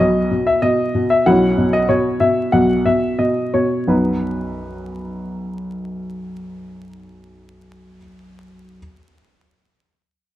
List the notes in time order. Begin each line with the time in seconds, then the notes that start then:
Already playing: B3 E4
0.00 B1 B2 D#5
0.31 B2
0.47 E5
0.62 B2 D#5
0.95 B2
1.10 E5
1.26 B1 B2 C#4 E4 F#5
1.58 B2
1.73 D#5
1.89 B2 C#5
2.20 B2 E5
2.52 B1 B2 F#5
2.86 B2 E5
3.19 B2 D#5
3.54 B2 C#5
3.87 B1 F#2 F#3 B3 D#4 F#4 B4